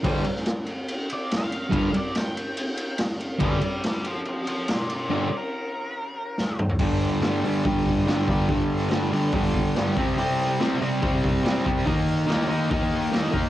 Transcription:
<<
  \new Staff \with { instrumentName = "Lead electric guitar" } { \time 4/4 \key g \minor \tempo 4 = 142 r2 r8 d''8 f''4 | f''8 d''8 g''2 r4 | <d'' g''>8 <d'' g''>8 <d'' g''>8 <c'' f''>8 <c'' f''>8 <c'' f''>8 <bes' d''>8 <bes' d''>8 | <bes' d''>8 bes'2. r8 |
r1 | r1 | r1 | r1 | }
  \new Staff \with { instrumentName = "Distorted electric guitar" } { \clef bass \time 4/4 \key g \minor <g, d g>8 r2. r8 | <g, d g>8 r2. r8 | <g, d g>8 r2. r8 | <g, d g>8 r2. r8 |
<g, d g>4 <g, d g>8 <g, d g>8 <g, d g>4 <g, d g>8 <g, d g>8 | <g, d g>4 <g, d g>8 <g, d g>8 <g, d g>4 <g, d g>8 <c g c'>8 | <c g c'>4 <c g c'>8 <c g c'>8 <c g c'>4 <c g c'>8 <c g c'>8 | <ees bes ees'>4 <ees bes ees'>8 <ees bes ees'>8 <ees bes ees'>4 <ees bes ees'>8 <ees bes ees'>8 | }
  \new DrumStaff \with { instrumentName = "Drums" } \drummode { \time 4/4 <cymc bd>8 cymr16 sn16 <cymr sn>8 cymr8 cymr8 cymr8 <cymr sn>8 cymr8 | <bd cymr>8 cymr8 <cymr sn>8 cymr8 cymr8 cymr8 <cymr sn>8 cymr8 | <bd cymr>8 cymr8 <cymr sn>8 cymr8 cymr8 cymr8 <cymr sn>8 cymr8 | r4 r4 r4 sn8 toml16 tomfh16 |
<cymc bd>8 hho8 <hho sn>8 hho8 <hho bd>8 <hho bd>8 <hho sn>8 <hho bd>8 | <hho bd>8 hho8 <hho sn>8 hho8 <hho bd>8 <hho bd>8 <hho sn>8 <hho bd>8 | hho8 hho8 <hho sn>8 hho8 <hho bd>8 <hho bd>8 <hho sn>8 <hho bd>8 | <hho bd>8 hho8 <hho sn>8 hho8 <hho bd>8 hho8 <hho sn>8 <hho bd>8 | }
>>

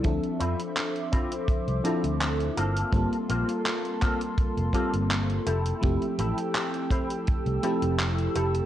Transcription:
<<
  \new Staff \with { instrumentName = "Ambient pad" } { \time 4/4 \key d \minor \tempo 4 = 83 << { <c'' e'' d'''>2.~ <c'' e'' d'''>8 <bes c'''>8~ | <bes c'''>2.~ <bes c'''>8 <a' e'''>8~ | <a' e'''>1 | } \\ { r2. r8 a''8~ | a''2.~ a''8 g''8~ | g''2.~ g''8 a''8 | } >> }
  \new Staff \with { instrumentName = "Clean electric guitar" } { \time 4/4 \key d \minor r8 <c' e' f'>16 r8. <c' e' f'>16 r8. <c' e' f'>16 r8. <bes c' f' a'>8~ | <bes c' f' a'>8 <bes c' f' c''>16 r8. <bes c' f' a'>16 r8. <bes c' f' a'>16 r8. <e' g' a'>8~ | <e' g' a'>8 <e' g' a'>16 r8. <e' g' c''>16 r8. <e' g' a'>16 r8. <e' g' a'>16 r16 | }
  \new Staff \with { instrumentName = "FM electric piano" } { \time 4/4 \key d \minor <f c' d' a' e''>2~ <f c' d' a' e''>8 <f c' d' e' a'>8 r4 | <g bes c' f' a'>2~ <g bes c' f' a'>8 <g bes c' f' a'>8 r4 | <f a c' e' g'>2~ <f a c' e' g'>8 <f a c' e' g'>8 r4 | }
  \new Staff \with { instrumentName = "Fingered electric bass" } { \clef bass \time 4/4 \key d \minor d,16 r16 f,16 r4. c,16 r16 d,8 r16 g,,16 r16 | g,,16 r16 bes,,16 r4. f,,16 r16 g,,8 r16 f,,16 r16 | f,,16 r16 a,,16 r4. c,16 r16 f,,8 r16 f,,16 r16 | }
  \new DrumStaff \with { instrumentName = "Drums" } \drummode { \time 4/4 <hh bd>16 hh16 hh16 hh16 <hc hh>16 hh16 <hh bd>16 hh16 <hh bd>16 hh16 hh16 hh16 <hc hh>16 hh16 hh16 hh16 | <hh bd>16 hh16 hh16 hh16 <hc hh>16 hh16 <hc hh bd>16 hh16 <hh bd>16 hh16 <hh bd>16 hh16 <hc hh>16 hh16 hh16 hh16 | <hh bd>16 hh16 hh16 hh16 <hc hh>16 hh16 <hh bd>16 hh16 <hh bd>16 hh16 hh16 hh16 <hc hh>16 hh16 hh16 hh16 | }
>>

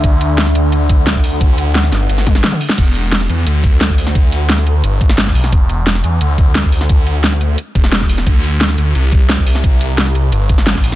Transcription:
<<
  \new Staff \with { instrumentName = "Ambient pad" } { \time 4/4 \key e \minor \tempo 4 = 175 <d' a' fis''>1~ | <d' a' fis''>1 | r1 | r1 |
r1 | r1 | r1 | r1 | }
  \new Staff \with { instrumentName = "Detuned saw bass" } { \clef bass \time 4/4 \key e \minor d,4. d,2~ d,8~ | d,4. g,,8 g,,4 r4 | e,,4. e,8 d,2~ | d,2 g,,4. b,,8 |
e,,4. e,8 d,2~ | d,2 r8 e,,4 e,,8 | d,4. d,8 c,2~ | c,2 g,,4. a,,8 | }
  \new DrumStaff \with { instrumentName = "Drums" } \drummode { \time 4/4 <hh bd>8 hh8 <hh sn>16 sn16 hh8 hh8 <hh bd>8 <hh sn>16 bd16 hho8 | <hh bd>8 hh8 <hh sn>16 sn16 <hh sn>8 hh16 sn16 <hh bd tommh>16 sn16 <hh sn toml>16 toml16 hho16 sn16 | <cymc hh bd>8 hh8 <hh sn>16 sn16 hh8 hh8 <hh bd>8 <hh sn>16 bd16 hho16 sn16 | <hh bd>8 hh8 <hh sn>16 sn16 hh8 hh8 <hh bd>16 sn16 <hh sn>16 <bd sn>16 hho16 sn16 |
<hh bd>8 hh8 <hh sn>16 sn16 hh8 hh8 <hh bd>8 <hh sn>16 bd16 hho16 sn16 | <hh bd>8 hh8 <hh sn>16 sn16 hh8 hh8 <hh bd>16 sn16 <hh sn>16 <bd sn>16 hho16 sn16 | <hh bd>8 hh8 <hh sn>16 sn16 hh8 hh8 <hh bd>8 <hh sn>16 bd16 hho16 sn16 | <hh bd>8 hh8 <hh sn>16 sn16 hh8 hh8 <hh bd>16 sn16 <hh sn>16 <bd sn>16 hho16 sn16 | }
>>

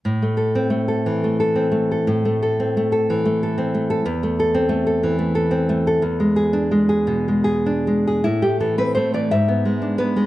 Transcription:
\new Staff \with { instrumentName = "Nylon-string guitar" } { \time 6/8 \key a \minor \tempo 4. = 59 << { r2. | r2. | r2. | r2. |
e'16 g'16 a'16 b'16 c''16 d''16 e''4 b'8 | } \\ { a,16 a16 a'16 c'16 a16 a'16 e16 a16 a'16 c'16 a16 a'16 | a,16 a16 a'16 c'16 a16 a'16 e16 a16 a'16 c'16 a16 a'16 | e,16 a16 a'16 c'16 a16 a'16 e16 a16 a'16 c'16 a16 a'16 | e,16 gis16 gis'16 d'16 gis16 gis'16 b,16 gis16 gis'16 d'16 gis16 gis'16 |
a,16 a16 e16 c'16 a16 e16 gis,16 b16 gis16 d'16 b16 gis16 | } >> }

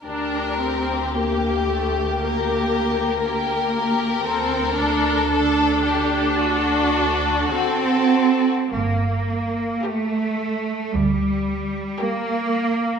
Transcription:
<<
  \new Staff \with { instrumentName = "Violin section" } { \time 4/4 \key g \minor \tempo 4 = 56 g'2 bes'4 g'8 g'8 | a'2 a'4 fis'4 | r4 bes'4 r4 bes'4 | }
  \new Staff \with { instrumentName = "Violin section" } { \time 4/4 \key g \minor bes'4 g'4 g'4 bes'4~ | bes'4 a'8 g'8 fis'4 a'4 | r4 g'4 r4 g'4 | }
  \new Staff \with { instrumentName = "Viola section" } { \time 4/4 \key g \minor d'8 c'8 bes8 a8 bes2 | c'8 d'8 d'2 c'4 | r4 g'4 r4 g'4 | }
  \new Staff \with { instrumentName = "Cello section" } { \time 4/4 \key g \minor d,1 | d,2. c'4 | bes4 a4 g4 bes4 | }
  \new Staff \with { instrumentName = "Double bass section" } { \clef bass \time 4/4 \key g \minor r1 | r1 | g,,4 r4 d,4 r4 | }
>>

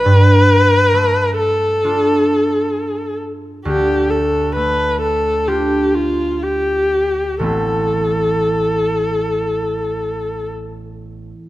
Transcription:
<<
  \new Staff \with { instrumentName = "Viola" } { \time 4/4 \key a \minor \tempo 4 = 64 b'4. a'2 r8 | g'8 a'8 b'8 a'8 g'8 f'8 g'4 | a'2. r4 | }
  \new Staff \with { instrumentName = "Harp" } { \time 4/4 \key a \minor <g, a d'>4 a4 <d' f'>2 | d,4 a4 <d' f'>2 | <a,, a b c' e'>1 | }
>>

